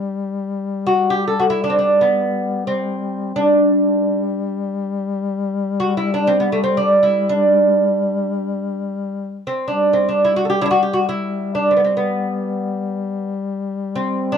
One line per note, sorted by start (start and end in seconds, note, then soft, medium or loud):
0.00 3.33 G3 medium
0.87 1.12 F#4 medium
1.10 1.27 G4 medium
1.27 1.41 A4 medium
1.40 1.49 F#4 medium
1.50 1.63 E4 medium
1.64 1.71 D4 medium
1.70 1.77 C4 medium
1.79 2.02 D4 medium
2.01 2.67 B3 medium
2.67 3.35 C4 medium
3.34 9.51 G3 medium
3.34 5.08 D4 medium
5.80 5.97 F#4 medium
5.97 6.11 E4 medium
6.14 6.27 D4 medium
6.27 6.38 C4 medium
6.40 6.50 B3 medium
6.52 6.62 A3 medium
6.64 6.76 C4 medium
6.77 7.01 D4 medium
7.03 7.28 E4 medium
7.29 8.80 D4 medium
9.47 9.67 C4 medium
9.68 14.38 G3 medium
9.68 9.92 D4 medium
9.93 10.08 C4 medium
10.09 10.22 D4 medium
10.25 10.36 E4 medium
10.36 10.44 F#4 medium
10.45 10.47 A4 medium
10.50 10.59 G4 medium
10.61 10.64 D4 medium
10.61 10.63 E4 medium
10.66 10.70 E4 medium
10.71 10.80 F#4 medium
10.83 10.93 G4 medium
10.93 11.08 F#4 medium
11.09 11.54 E4 medium
11.55 11.71 D4 medium
11.71 11.76 C4 medium
11.77 11.82 B3 medium
11.84 11.96 C4 medium
11.97 13.33 B3 medium
13.95 14.33 C4 medium
14.32 14.38 D4 medium